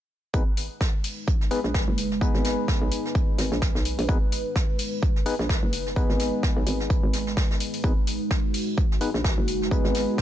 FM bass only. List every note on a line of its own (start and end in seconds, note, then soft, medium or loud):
0.34 0.69 G#1 medium
1.64 1.86 A#1 medium
1.88 2.33 F#1 medium
2.35 2.56 G#1 medium
2.82 2.90 B1 medium
3.39 3.50 G#1 loud
3.52 3.73 A#1 medium
3.75 3.97 B1 medium
3.99 4.07 A#1 medium
4.09 4.43 G#1 medium
5.39 5.61 A#1 loud
5.63 6.08 F#1 medium
6.10 6.31 G#1 medium
6.57 6.65 B1 medium
6.67 7.01 G#1 medium
7.03 7.35 G#1 medium
7.84 8.19 G#1 loud
9.14 9.36 A#1 medium
9.38 9.83 F#1 medium
9.85 10.06 G#1 medium